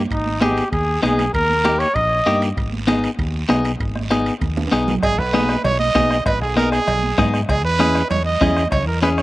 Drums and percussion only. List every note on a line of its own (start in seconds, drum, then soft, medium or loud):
0.11 bombo low medium
0.11 high timbale medium
0.11 long guiro medium
0.26 high conga medium
0.42 bombo rim medium
0.42 high conga medium
0.42 high timbale medium
0.42 short guiro medium
0.57 high timbale medium
0.57 short guiro medium
0.72 bombo low medium
0.72 high conga soft
0.72 high timbale medium
0.72 long guiro medium
0.88 high conga soft
1.03 bombo rim medium
1.03 high conga medium
1.03 high timbale medium
1.03 short guiro medium
1.19 high conga medium
1.19 high timbale medium
1.19 short guiro medium
1.34 bombo low medium
1.34 high timbale medium
1.34 long guiro medium
1.50 high conga medium
1.65 bombo rim medium
1.65 high conga medium
1.65 high timbale medium
1.65 short guiro medium
1.80 high timbale medium
1.80 short guiro medium
1.95 bombo low medium
1.95 high conga soft
1.95 high timbale medium
1.95 long guiro medium
2.11 high conga soft
2.26 bombo rim medium
2.26 high conga medium
2.26 high timbale medium
2.26 short guiro medium
2.42 high timbale medium
2.42 short guiro medium
2.57 bombo low medium
2.57 high timbale medium
2.57 long guiro medium
2.73 high conga medium
2.88 bombo rim medium
2.88 high conga loud
2.88 high timbale medium
2.88 short guiro medium
3.04 high timbale medium
3.04 short guiro medium
3.19 bombo low medium
3.19 high conga soft
3.19 high timbale medium
3.19 long guiro medium
3.34 high conga soft
3.49 bombo rim medium
3.49 high conga medium
3.49 high timbale medium
3.49 low timbale medium
3.49 short guiro medium
3.65 high timbale medium
3.65 short guiro medium
3.80 bombo low medium
3.80 high timbale medium
3.80 long guiro medium
3.96 bombo rim medium
3.96 high conga medium
4.11 bombo rim medium
4.11 high conga loud
4.11 high timbale medium
4.11 short guiro medium
4.26 high timbale medium
4.26 short guiro medium
4.41 bombo low medium
4.41 high conga medium
4.41 high timbale medium
4.41 long guiro medium
4.57 high conga medium
4.57 high timbale medium
4.67 high timbale medium
4.72 bombo rim medium
4.72 low conga medium
4.72 short guiro medium
4.88 low conga medium
4.88 low timbale medium
4.88 short guiro medium
5.03 bombo low medium
5.03 bombo rim medium
5.03 cowbell loud
5.03 long guiro medium
5.33 bombo rim medium
5.33 high conga medium
5.33 short guiro medium
5.49 bombo rim medium
5.49 short guiro medium
5.64 bombo rim medium
5.64 cowbell medium
5.64 low conga medium
5.64 long guiro medium
5.80 high conga medium
5.95 bombo low medium
5.95 bombo rim medium
5.95 high conga medium
5.95 low timbale medium
5.95 short guiro medium
6.10 bombo rim medium
6.10 short guiro medium
6.26 bombo low medium
6.26 bombo rim medium
6.26 cowbell loud
6.26 long guiro medium
6.57 bombo rim medium
6.57 high conga medium
6.57 short guiro medium
6.72 bombo rim medium
6.72 short guiro medium
6.87 bombo rim medium
6.87 cowbell medium
6.87 low conga medium
6.87 long guiro medium
7.03 high conga medium
7.18 bombo low medium
7.18 bombo rim medium
7.18 high conga medium
7.18 low conga medium
7.18 short guiro medium
7.34 bombo rim medium
7.34 short guiro medium
7.49 bombo low medium
7.49 bombo rim medium
7.49 cowbell medium
7.49 long guiro medium
7.80 bombo rim medium
7.80 high conga medium
7.80 short guiro medium
7.95 bombo rim medium
7.95 short guiro medium
8.10 bombo rim medium
8.10 cowbell medium
8.10 low conga medium
8.10 long guiro medium
8.41 bombo low medium
8.41 bombo rim medium
8.41 high conga medium
8.41 low conga medium
8.41 short guiro medium
8.57 bombo rim medium
8.57 short guiro medium
8.72 bombo low medium
8.72 bombo rim medium
8.72 cowbell medium
8.72 low conga medium
8.72 long guiro medium
9.03 bombo rim medium
9.03 high conga medium
9.03 short guiro medium
9.18 bombo rim medium
9.18 short guiro medium